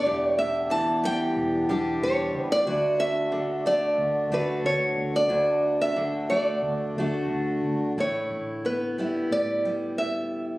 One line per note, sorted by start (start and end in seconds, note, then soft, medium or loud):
0.00 0.70 D3 medium
0.00 2.63 E3 medium
0.00 2.63 B3 medium
0.00 2.62 D4 medium
0.00 2.63 G4 medium
0.00 0.27 D5 loud
0.05 1.20 E1 medium
0.05 2.63 E2 medium
0.05 1.69 G4 medium
0.27 0.38 C#5 loud
0.39 0.68 E5 medium
0.70 2.62 E3 medium
0.70 1.01 A5 loud
1.04 1.68 G3 medium
1.04 2.03 G5 loud
1.36 1.65 E1 medium
1.69 1.97 E1 medium
1.69 2.67 G3 medium
1.69 4.32 D4 medium
1.69 2.63 G4 medium
2.02 2.30 E1 medium
2.02 2.52 C#5 medium
2.34 2.63 C#2 medium
2.52 2.99 D5 loud
2.66 5.28 D2 medium
2.66 3.82 D2 loud
2.66 7.93 D3 medium
2.66 7.93 A3 medium
2.66 7.93 D4 medium
2.66 7.93 F#4 medium
2.66 4.31 F#4 medium
3.00 3.66 E5 medium
3.32 5.95 D3 medium
3.66 4.31 A3 medium
3.66 4.34 D5 medium
3.98 4.27 D2 medium
4.30 4.60 D2 medium
4.30 6.30 A3 medium
4.30 6.98 D4 medium
4.30 5.27 F#4 medium
4.30 4.63 B4 medium
4.64 4.93 D2 medium
4.64 5.11 C#5 medium
4.97 5.26 D2 medium
5.16 5.77 D5 medium
5.29 7.97 D2 medium
5.29 6.47 D2 medium
5.29 6.96 F#4 medium
5.81 6.27 E5 medium
5.96 10.58 D3 medium
6.30 6.97 A3 medium
6.30 7.60 D5 medium
6.62 6.92 D2 medium
6.97 7.26 D2 medium
6.97 7.94 A3 medium
6.97 7.94 D4 medium
6.97 7.95 F#4 medium
7.29 7.59 D2 medium
7.64 7.93 D2 medium
7.97 8.27 A1 medium
7.97 10.58 A2 medium
7.97 9.00 E4 soft
7.97 8.68 C#5 medium
8.30 9.19 A1 medium
8.65 8.99 B3 soft
8.65 9.28 B4 medium
8.98 9.65 G3 soft
8.98 10.58 B3 soft
8.98 10.58 E4 medium
9.31 10.48 A2 medium
9.31 9.94 D5 medium
9.65 10.58 G3 soft
9.98 10.44 E5 medium